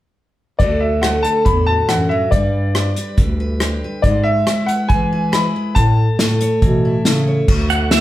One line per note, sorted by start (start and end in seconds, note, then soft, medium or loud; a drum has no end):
0.59 1.24 D2 medium
0.59 1.89 D3 medium
0.59 1.02 A3 medium
0.59 2.30 D4 medium
0.59 1.67 F#4 medium
0.59 0.81 D5 medium
0.59 kick medium
0.59 closed hi-hat soft
0.63 1.24 A4 medium
0.80 1.03 E5 medium
1.02 2.30 A3 medium
1.02 1.24 F#5 medium
1.02 cross-stick loud
1.02 closed hi-hat medium
1.23 2.32 A4 medium
1.23 1.43 A5 medium
1.23 closed hi-hat medium
1.45 1.82 E2 medium
1.45 2.32 A2 medium
1.45 1.68 B5 medium
1.45 kick medium
1.45 closed hi-hat medium
1.67 2.30 F#4 soft
1.67 1.87 A5 medium
1.88 2.26 F#2 medium
1.88 2.11 E3 medium
1.88 2.11 F#5 medium
1.88 cross-stick medium
1.88 closed hi-hat medium
2.09 2.32 F#3 medium
2.09 2.32 E5 medium
2.31 2.97 G2 medium
2.31 4.05 G3 medium
2.31 3.14 D5 medium
2.31 kick medium
2.31 closed hi-hat medium
2.75 3.60 D4 medium
2.75 cross-stick loud
2.75 closed hi-hat medium
2.96 3.39 B4 medium
2.96 closed hi-hat soft
3.18 3.83 D2 medium
3.18 4.04 D3 medium
3.18 kick medium
3.18 closed hi-hat soft
3.40 3.83 B4 medium
3.60 4.01 D4 soft
3.60 4.02 G4 medium
3.60 cross-stick medium
3.60 closed hi-hat soft
3.84 4.02 B4 medium
4.02 4.48 G#2 medium
4.02 4.88 G#3 medium
4.02 4.25 D5 medium
4.02 kick medium
4.02 closed hi-hat soft
4.23 4.69 E5 medium
4.47 5.32 E4 medium
4.47 cross-stick medium
4.47 closed hi-hat medium
4.66 5.11 B4 medium
4.66 4.90 F#5 medium
4.66 closed hi-hat medium
4.88 5.55 E3 medium
4.88 5.73 G#3 medium
4.88 5.29 G#5 medium
4.88 kick medium
4.88 closed hi-hat medium
5.13 5.55 B4 medium
5.32 5.74 E4 medium
5.32 5.74 G#4 soft
5.32 5.77 B5 medium
5.32 cross-stick loud
5.32 closed hi-hat medium
5.56 5.74 B4 medium
5.75 7.48 A2 medium
5.75 6.08 A2 medium
5.75 7.22 A5 medium
5.75 kick medium
5.75 closed hi-hat medium
6.19 6.56 A2 medium
6.19 7.04 A3 medium
6.19 snare loud
6.19 closed hi-hat medium
6.41 7.26 C#5 medium
6.41 closed hi-hat medium
6.62 6.99 B2 medium
6.62 7.46 E3 medium
6.62 kick medium
6.62 closed hi-hat medium
6.85 7.49 E4 soft
7.05 7.41 C#3 medium
7.05 7.46 A3 medium
7.05 7.46 C#4 soft
7.05 snare medium
7.05 closed hi-hat medium
7.27 7.46 C#5 medium
7.48 8.01 D2 medium
7.48 8.01 D3 medium
7.48 kick loud
7.48 crash medium
7.70 7.91 F#5 medium
7.70 closed hi-hat medium
7.91 8.01 A3 medium
7.91 8.01 E5 medium
7.91 snare loud
7.91 closed hi-hat medium